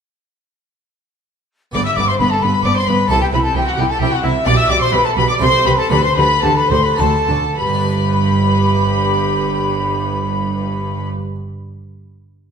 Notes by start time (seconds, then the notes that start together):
1.71 G1 G2 B3 G4 D5 D6
1.85 E5 E6
1.97 G1 G2 B3 D5 D6
2.08 C5 C6
2.19 G1 G2 B3 B4 B5
2.30 A4 A5
2.42 G1 G2 B3 B4 B5
2.64 G1 G2 B3 D5 D6
2.76 C5 C6
2.87 G1 G2 B3 B4 B5
3.08 C2 C3 E4 G4 A4 A5
3.21 G4 G5
3.32 C2 C3 E4 B4 B5
3.43 A4 A5
3.54 C2 C3 E4 G4 G5
3.66 F#4 F#5
3.77 C2 C3 E4 G4 G5
3.89 A4 A5
4.00 C2 C3 E4 G4 G5
4.12 F#4 F#5
4.23 C2 C3 E4 E5
4.45 B1 B2 D4 G4 D5 D6
4.58 E5 E6
4.68 B1 B2 G4 D5 D6
4.81 C5 C6
4.91 B1 B2 G4 B4 B5
5.05 A4 A5
5.15 B1 B2 G4 B4 B5
5.28 D5 D6
5.38 C2 C3 E4 G4 A4 C5 C6
5.64 C2 C3 G4 B4 B5
5.78 A4 A5
5.89 D2 D3 D4 G4 B4 B5
6.04 C5 C6
6.16 D2 D3 G4 B4 B5
6.42 D2 D3 G4 A4 A5
6.56 B4 B5
6.70 D2 D3 G4 C5 C6
6.84 B4 B5
6.96 D2 D3 D4 F#4 A4 C5 A5
7.00 A5
7.28 D2 D3 F#4
7.57 G1 G2 G4 B4 B5
7.66 G3
7.73 D4
7.80 B4
7.87 D5